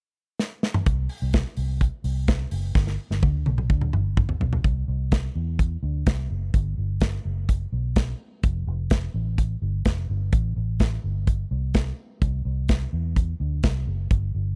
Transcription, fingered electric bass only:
0.86 1.06 C2 medium
1.22 1.42 C2 medium
1.57 1.87 C2 medium
2.04 2.45 C2 medium
2.52 2.72 F#1 medium
2.75 2.95 G1 loud
3.10 3.21 G1 medium
3.23 3.43 D2 medium
3.46 3.67 B1 medium
3.70 3.90 D2 medium
3.93 4.34 G1 medium
4.40 4.61 B1 medium
4.64 4.85 C2 medium
4.88 5.28 C2 medium
5.35 5.76 E2 medium
5.83 6.03 D2 medium
6.07 6.27 C2 medium
6.30 6.50 F#1 medium
6.54 6.74 G1 medium
6.78 7.18 G1 medium
7.25 7.65 F#1 medium
7.72 8.13 B1 medium
8.43 8.64 F1 loud
8.67 9.07 F1 medium
9.14 9.55 A1 medium
9.62 9.82 G1 medium
9.85 10.06 F1 medium
10.10 10.30 G1 medium
10.33 10.53 A1 medium
10.56 10.97 A1 medium
11.04 11.44 G1 medium
11.51 11.91 C2 medium
12.22 12.42 C2 medium
12.45 12.86 C2 medium
12.93 13.33 E2 medium
13.40 13.60 D2 medium
13.64 13.84 C2 medium
13.87 14.07 F#1 medium
14.11 14.31 G1 loud
14.35 14.56 G1 medium

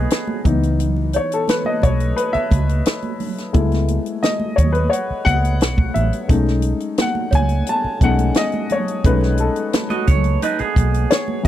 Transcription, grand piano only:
0.00 0.47 G#3 medium
0.00 0.47 A3 soft
0.00 0.47 C#4 soft
0.00 0.46 D#4 medium
0.00 0.48 G#4 medium
0.00 0.47 A4 medium
0.00 0.48 B4 medium
0.00 0.48 C#5 medium
0.00 0.47 D#5 medium
0.45 1.44 E3 medium
0.45 1.44 B3 soft
0.45 1.45 D#4 medium
1.16 1.33 C#5 medium
1.34 1.50 A4 medium
1.50 1.67 B4 medium
1.66 1.83 D#5 medium
1.83 2.18 C#5 medium
2.16 2.34 B4 medium
2.33 2.65 E5 medium
3.53 3.99 G#3 medium
3.53 4.00 A3 soft
3.53 4.00 B3 soft
3.53 4.00 E4 medium
4.23 4.55 D#5 medium
4.56 4.74 C#5 medium
4.72 4.91 B4 medium
4.90 4.98 C#5 medium
5.25 5.96 F#5 loud
5.94 6.02 E5 medium
6.28 8.00 G#3 medium
6.28 8.01 A3 soft
6.28 8.01 C#4 medium
6.28 8.01 D#4 medium
7.01 7.35 F#5 medium
7.35 7.69 G#5 medium
7.69 8.03 A5 medium
8.02 8.32 G#3 medium
8.02 8.33 A3 soft
8.02 8.33 C#4 soft
8.02 8.33 D#4 medium
8.02 8.11 F#5 medium
8.37 8.72 D#5 medium
8.72 9.06 C#5 medium
9.05 9.51 G#3 medium
9.05 9.50 A3 soft
9.05 9.51 C#4 soft
9.05 9.51 D#4 medium
9.05 9.40 B4 medium
9.40 9.71 A4 medium
11.11 11.46 C#5 medium
11.43 11.48 E3 medium
11.43 11.48 B3 soft

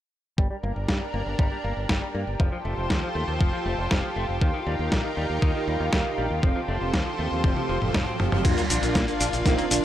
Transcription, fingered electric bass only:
0.38 0.47 G1 medium
0.63 0.72 G1 medium
0.76 0.85 G1 medium
0.89 0.97 G2 loud
1.14 1.23 G1 medium
1.26 1.35 G1 medium
1.39 1.48 G1 medium
1.64 1.73 G1 medium
1.77 1.86 G1 medium
1.89 1.98 G1 medium
2.15 2.23 G2 medium
2.27 2.36 G1 medium
2.40 2.49 F1 medium
2.65 2.74 F1 medium
2.77 2.86 F1 medium
2.90 2.99 D#2 medium
3.15 3.24 D#2 medium
3.28 3.37 D#2 medium
3.41 3.50 F1 medium
3.66 3.75 F1 medium
3.78 3.87 F1 medium
3.91 4.00 F1 loud
4.16 4.25 F1 medium
4.29 4.38 F1 medium
4.41 4.50 D#2 medium
4.67 4.75 D#2 medium
4.79 4.88 D#2 medium
4.92 5.01 A#1 medium
5.17 5.26 D#2 medium
5.30 5.39 D#2 medium
5.42 5.51 D#2 medium
5.68 5.76 D#2 medium
5.80 5.89 D#2 medium
5.93 6.02 D#2 medium
6.18 6.27 A#1 medium
6.30 6.39 D#2 medium
6.43 6.52 F1 medium
6.68 6.77 F1 medium
6.81 6.90 F1 medium
6.94 7.02 D#2 loud
7.19 7.28 D#2 medium
7.32 7.40 D#2 medium
7.44 7.53 F1 loud
7.69 7.78 F1 medium
7.82 7.91 F1 medium
7.94 8.03 F1 loud
8.20 8.29 F1 medium
8.33 8.41 F1 medium
8.45 8.54 A#1 loud
8.70 8.79 A#1 medium
8.83 8.92 A#1 medium
8.95 9.04 A#2 loud
9.21 9.29 A#1 medium
9.33 9.42 A#1 medium
9.46 9.55 A#1 loud
9.71 9.80 A#1 medium

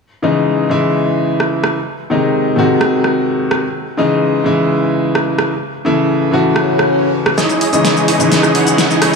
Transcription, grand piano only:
0.22 0.67 C#3 medium
0.22 0.67 E3 medium
0.22 0.67 G#3 medium
0.22 0.67 D#4 loud
0.69 1.73 C#3 medium
0.69 1.74 E3 medium
0.69 1.74 G#3 medium
0.69 1.74 E4 loud
2.10 2.54 C3 medium
2.10 2.54 D#3 medium
2.10 2.55 G#3 medium
2.10 2.55 D#4 loud
2.56 3.61 C3 medium
2.56 3.61 D#3 medium
2.56 3.62 G#3 medium
2.56 3.62 F#4 loud
3.97 4.42 C#3 medium
3.97 4.42 E3 medium
3.97 4.42 G#3 medium
3.97 4.42 D#4 loud
4.44 5.48 C#3 medium
4.44 5.49 E3 medium
4.44 5.49 G#3 medium
4.44 5.49 E4 loud
5.85 6.29 C#3 loud
5.85 6.29 E3 medium
5.85 6.30 A3 medium
5.85 6.30 E4 loud
6.31 7.36 C#3 medium
6.31 7.36 E3 medium
6.31 7.37 A3 medium
6.31 7.37 F#4 loud
7.72 8.17 C#3 medium
7.72 8.17 E3 medium
7.72 8.17 G#3 medium
7.72 8.17 D#5 loud
8.18 9.15 C#3 loud
8.18 9.15 E3 medium
8.18 9.15 G#3 medium

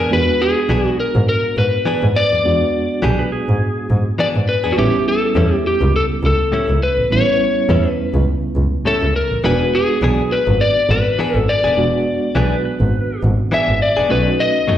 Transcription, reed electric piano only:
0.10 2.40 G#3 medium
0.10 2.41 B3 medium
0.10 2.41 D4 soft
0.10 2.41 F#4 medium
2.44 4.73 G#3 medium
2.44 4.74 B3 soft
2.44 4.74 D4 medium
2.44 4.75 F#4 medium
4.77 7.07 G3 medium
4.77 7.07 B3 medium
4.77 7.07 C#4 soft
4.77 7.08 E4 medium
7.10 9.40 G3 medium
7.10 9.40 B3 medium
7.10 9.40 C#4 medium
7.10 9.41 E4 medium
9.43 11.73 G#3 medium
9.43 11.73 B3 medium
9.43 11.73 D4 soft
9.43 11.74 F#4 medium
11.76 14.06 G#3 medium
11.76 14.06 B3 medium
11.76 14.06 D4 medium
11.76 14.07 F#4 medium
14.09 14.78 A3 medium
14.09 14.78 C#4 medium
14.09 14.78 D#4 soft
14.09 14.78 F#4 medium

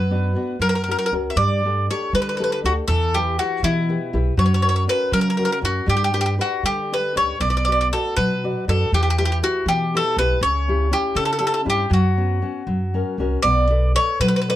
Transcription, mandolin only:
0.00 0.61 B4 medium
0.62 0.68 A#4 medium
0.69 0.74 A#4 medium
0.75 0.82 A#4 soft
0.84 0.90 A#4 soft
0.91 0.97 A#4 medium
0.99 1.05 A#4 medium
1.06 1.13 A#4 medium
1.30 1.37 E5 soft
1.37 1.85 D5 medium
1.91 2.13 C#5 medium
2.15 2.21 B4 medium
2.22 2.28 B4 medium
2.29 2.36 B4 medium
2.37 2.43 B4 soft
2.44 2.51 B4 medium
2.52 2.59 B4 soft
2.66 2.72 F#4 medium
2.88 3.16 A4 medium
3.14 3.37 G4 medium
3.39 3.61 F#4 medium
3.64 4.16 E4 medium
4.39 4.45 C#5 medium
4.46 4.53 C#5 medium
4.54 4.61 C#5 medium
4.62 4.68 C#5 medium
4.69 4.75 C#5 medium
4.76 4.83 C#5 medium
4.89 5.12 B4 medium
5.13 5.20 A#4 medium
5.21 5.28 A#4 medium
5.30 5.36 A#4 medium
5.37 5.44 A#4 soft
5.45 5.51 A#4 medium
5.52 5.58 A#4 medium
5.65 5.87 F#4 medium
5.90 5.95 G4 medium
5.97 6.03 G4 medium
6.04 6.12 G4 medium
6.14 6.20 G4 medium
6.21 6.25 G4 medium
6.26 6.33 G4 soft
6.41 6.63 F#4 medium
6.66 6.92 G4 medium
6.94 7.15 B4 medium
7.17 7.39 C#5 medium
7.41 7.48 D5 medium
7.50 7.56 D5 soft
7.57 7.64 D5 medium
7.65 7.71 D5 medium
7.72 7.78 D5 medium
7.81 7.86 D5 medium
7.93 8.16 A4 medium
8.17 8.64 B4 medium
8.69 8.91 A4 medium
8.94 9.00 G4 medium
9.03 9.08 G4 medium
9.10 9.16 G4 medium
9.18 9.23 G4 medium
9.25 9.30 G4 medium
9.32 9.37 G4 soft
9.44 9.65 F#4 medium
9.68 9.95 G4 medium
9.97 10.18 A4 medium
10.19 10.40 B4 medium
10.43 10.94 C#5 medium
10.93 11.17 G4 medium
11.16 11.24 A4 medium
11.25 11.31 A4 medium
11.33 11.38 A4 soft
11.39 11.46 A4 soft
11.47 11.53 A4 medium
11.54 11.61 A4 medium
11.70 11.93 G4 medium
11.93 13.16 F#4 medium
13.42 13.91 D5 medium
13.96 14.18 C#5 medium
14.21 14.27 B4 medium
14.28 14.35 B4 medium
14.36 14.40 B4 medium
14.42 14.48 B4 soft
14.50 14.56 B4 medium

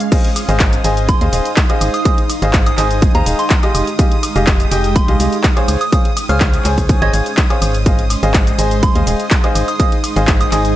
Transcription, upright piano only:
0.12 0.28 G#4 medium
0.12 0.28 C5 medium
0.12 0.28 D#5 medium
0.12 0.28 F5 medium
0.49 0.82 G#4 medium
0.49 0.82 C5 medium
0.49 0.82 D#5 medium
0.49 0.82 F5 medium
0.84 1.18 G#4 medium
0.84 1.18 C5 medium
0.84 1.18 D#5 medium
0.84 1.18 G#5 medium
1.21 1.31 G#4 medium
1.21 1.30 C5 medium
1.21 1.30 D#5 medium
1.21 1.31 F5 loud
1.33 1.49 G#4 medium
1.33 1.49 C5 medium
1.33 1.49 D#5 medium
1.33 1.49 F5 medium
1.70 1.94 G#4 medium
1.70 1.94 C5 medium
1.70 1.94 D#5 medium
1.70 1.94 F5 loud
2.05 2.21 G#4 medium
2.05 2.21 C5 medium
2.05 2.21 D#5 medium
2.05 2.21 F5 medium
2.42 2.75 G#4 medium
2.42 2.75 C5 medium
2.42 2.75 D#5 medium
2.42 2.75 F5 loud
2.78 3.12 G#4 medium
2.78 3.12 C5 medium
2.78 3.12 D#5 medium
2.78 3.12 G#5 medium
3.15 3.24 G#4 medium
3.15 3.24 C5 medium
3.15 3.24 D#5 medium
3.15 3.24 F5 loud
3.26 3.42 G#4 medium
3.26 3.42 C5 medium
3.26 3.42 D#5 medium
3.26 3.42 F5 medium
3.63 3.88 G4 medium
3.63 3.88 G#4 medium
3.63 3.88 D#5 medium
3.63 3.88 F5 loud
3.99 4.15 G4 medium
3.99 4.15 G#4 medium
3.99 4.15 D#5 medium
3.99 4.15 F5 medium
4.36 4.69 G4 medium
4.36 4.69 G#4 medium
4.36 4.69 D#5 medium
4.36 4.69 F5 loud
4.71 5.05 G4 medium
4.71 5.05 G#4 medium
4.71 5.05 D#5 medium
4.71 5.05 G5 medium
5.08 5.18 G4 medium
5.08 5.18 G#4 medium
5.08 5.18 D#5 medium
5.08 5.18 F5 loud
5.20 5.36 G4 medium
5.20 5.36 G#4 medium
5.20 5.36 D#5 medium
5.20 5.36 F5 medium
5.57 5.81 G#4 medium
5.57 5.81 C5 medium
5.57 5.81 C#5 medium
5.57 5.81 F5 loud
5.92 6.08 G#4 medium
5.92 6.08 C5 medium
5.92 6.08 C#5 medium
5.92 6.08 F5 medium
6.29 6.62 G#4 medium
6.29 6.62 C5 medium
6.29 6.62 C#5 medium
6.29 6.62 F5 loud
6.65 6.99 G#4 medium
6.65 6.99 C5 medium
6.65 6.99 C#5 medium
6.65 6.99 G#5 medium
7.02 7.11 G#4 loud
7.02 7.11 C5 medium
7.02 7.11 C#5 medium
7.02 7.11 D#5 loud
7.14 7.29 G#4 medium
7.14 7.29 C5 medium
7.14 7.29 C#5 medium
7.14 7.29 F5 medium
7.50 7.75 G#4 medium
7.50 7.75 C5 medium
7.50 7.75 C#5 medium
7.50 7.75 F5 loud
7.86 8.02 G#4 medium
7.86 8.02 C5 medium
7.86 8.02 D#5 medium
7.86 8.02 F5 medium
8.23 8.56 G#4 medium
8.23 8.56 C5 medium
8.23 8.56 D#5 medium
8.23 8.56 F5 loud
8.59 8.92 G#4 medium
8.59 8.92 C5 medium
8.59 8.92 D#5 medium
8.59 8.92 G#5 medium
8.95 9.05 G#4 medium
8.95 9.05 C5 medium
8.95 9.05 D#5 medium
8.95 9.05 F5 loud
9.07 9.23 G#4 medium
9.07 9.23 C5 medium
9.07 9.23 D#5 medium
9.07 9.23 F5 medium
9.44 9.68 G#4 medium
9.44 9.68 C5 medium
9.44 9.68 D#5 medium
9.44 9.68 F5 loud
9.80 9.95 G#4 medium
9.80 9.95 C5 medium
9.80 9.95 D#5 medium
9.80 9.95 F5 medium
10.16 10.49 G#4 medium
10.16 10.49 C5 medium
10.16 10.49 D#5 medium
10.16 10.49 F5 loud
10.52 10.76 G#4 medium
10.52 10.76 C5 medium
10.52 10.76 D#5 medium
10.52 10.76 G#5 medium

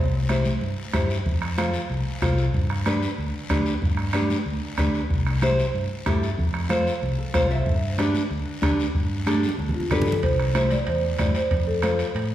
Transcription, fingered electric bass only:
0.00 0.49 C2 medium
0.61 0.74 G2 medium
0.94 1.19 G2 medium
1.25 1.77 F2 medium
1.90 2.03 C2 medium
2.22 2.48 C2 medium
2.54 3.05 G2 medium
3.18 3.31 D2 medium
3.50 3.76 D2 medium
3.82 4.33 G2 medium
4.46 4.59 D2 medium
4.78 5.04 D2 medium
5.10 5.61 C2 medium
5.74 5.87 G2 medium
6.06 6.32 G2 medium
6.38 6.89 F2 medium
7.02 7.15 C2 medium
7.34 7.60 C2 medium
7.66 8.18 G2 medium
8.30 8.43 D2 medium
8.62 8.88 D2 medium
8.95 9.46 G2 medium
9.58 9.71 D2 medium
9.91 10.17 G2 medium
10.23 10.74 C2 medium
10.86 11.12 E2 medium
11.19 11.32 G2 medium
11.51 12.02 F2 loud
12.15 12.35 A2 medium

